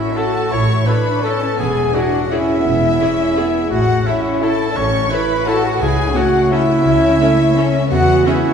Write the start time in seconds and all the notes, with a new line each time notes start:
Already playing: A2 A3 C#4 E4 E5
0.00 C#5
0.16 E4 F#4 A4 C#5 A5
0.35 E4
0.51 A1 A2 E4 C#5 C#6
0.69 A3
0.86 D4 E4 A4 B4 C#5 B5
1.06 C#5
1.23 C#4 E4 A4 C#5 A5
1.42 E4
1.59 E1 E2 B3 G#4 G#5
1.76 G#3
1.94 D4 E4 F#4 G#4 D5 F#5
2.13 D5
2.24 F#4
2.31 C#4 E4 G#4 D5 E5
2.49 E4
2.65 E1 E2 B3
2.83 G#3
3.00 C#4 E4 G#4 D5
3.19 D5
3.37 B3 E4 G#4 D5
3.54 E4
3.70 A1 A2 A3 F#4 F#5
3.88 A3
4.06 C#4 E4 A4 C#5 E5
4.25 C#5
4.42 E4 A4 C#5 A5
4.60 E4
4.71 D5
4.76 A1 A2 C#4 C#5 C#6
4.93 A3
5.11 E4 A4 B4 C#5 B5
5.29 C#5
5.47 E4 F#4 A4 C#5 A5
5.64 E4 F#4 F#5
5.80 C#2 C#3 E4 G#4 G#5
5.97 A3
6.15 A3 C#4 E4 F#4 A4 C#5 F#5
6.33 C#5
6.50 C#4 E4 A4 C#5 E5
6.69 E4
6.85 C#2 C#3 C#4
7.02 A3
7.20 A3 C#4 E4 A4 C#5
7.39 C#5
7.56 C#4 A4 C#5
7.75 E4
7.91 E2 B3 F#4 F#5
8.08 G#3
8.26 C#4 E4 G#4 C#5 E5
8.45 C#5